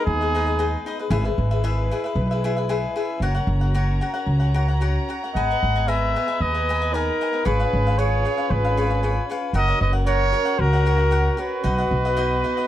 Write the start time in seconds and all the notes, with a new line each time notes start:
Already playing: G#3 B3 D#4 G#4 B4 D#5
0.05 D#2 D#4 G#4
0.21 G#4 B4 D#5
0.35 D#4 G#4 B4 D#5
0.46 G#4 B4 D#5
0.59 D#4 G#4 B4 D#5
0.86 D#4 G#4 B4 D#5
0.99 G#4 B4 D#5
1.10 G#1 E4 G#4 B4 E5
1.24 G#4 B4 E5
1.38 G#1
1.51 G#4 B4 E5
1.64 E4 G#4 B4 E5
1.91 E4 G#4 B4 E5
2.04 G#4 B4 E5
2.15 B1
2.31 G#4 B4 E5
2.44 E4 G#4 B4 E5
2.57 G#4 B4 E5
2.69 E4 G#4 B4 E5
2.96 E4 G#4 B4 E5
3.20 F#1 C#4 F#4 A#4 C#5 F#5 A#5
3.35 A#4 C#5 F#5
3.47 F#1
3.61 A#4 C#5 F#5
3.74 F#4 A#4 C#5 F#5
4.01 F#4 A#4 C#5 F#5
4.14 A#4 C#5 F#5
4.27 C#2
4.40 A#4 C#5 F#5
4.54 F#4 A#4 C#5 F#5
4.68 A#4 C#5 F#5
4.81 F#4 A#4 C#5 F#5
5.09 F#4 A#4 C#5 F#5
5.24 A#4 C#5 F#5
5.33 G#1 B3 G#4 A#4 B4 D#5 F#5 G#5
5.51 B4 D#5 G#5
5.63 G#1
5.76 B4 D#5 G#5
5.88 A#4 B4 D#5 E5 G#5
6.16 A#4 B4 D#5 G#5
6.28 B4 D#5 G#5
6.40 D#2 B4 D#5
6.54 B4 D#5 G#5
6.69 A#4 B4 D#5 G#5
6.82 B4 D#5 G#5
6.93 D#4 A#4 B4 D#5 G#5
7.21 A#4 B4 D#5 G#5
7.33 B4 D#5 G#5
7.45 G#1 C#4 F4 G#4 B4 C#5 F5
7.59 B4 C#5 F5
7.73 G#1
7.87 B4 C#5 F5
7.98 G#4 B4 C#5 F5
8.25 G#4 B4 C#5 F5
8.37 B4 C#5 F5
8.49 G#1 G#4 B4
8.65 B4 C#5 F5
8.77 G#4 B4 C#5 F5
8.90 B4 C#5 F5
9.03 G#4 B4 C#5 F5
9.29 G#4 B4 C#5 F5
9.53 F#1 C#4 F#4 A#4 C#5 D#5 F#5
9.68 A#4 C#5 F#5
9.81 F#1 B4 D#5
9.93 A#4 C#5 F#5
10.06 F#4 A#4 C#5 F#5
10.32 F#4 A#4 C#5 F#5
10.45 A#4 C#5 F#5
10.58 C#2 F#4 A#4
10.73 A#4 C#5 F#5
10.85 F#4 A#4 C#5 F#5
10.98 A#4 C#5 F#5
11.11 F#4 A#4 C#5 F#5
11.37 F#4 A#4 B4 C#5 F#5
11.64 B1 B3 D#4 B4 D#5 F#5
11.78 B4 D#5 F#5
11.91 B1
12.05 B4 D#5 F#5
12.17 D#4 B4 D#5 F#5
12.44 D#4 B4 D#5 F#5
12.57 B4 D#5 F#5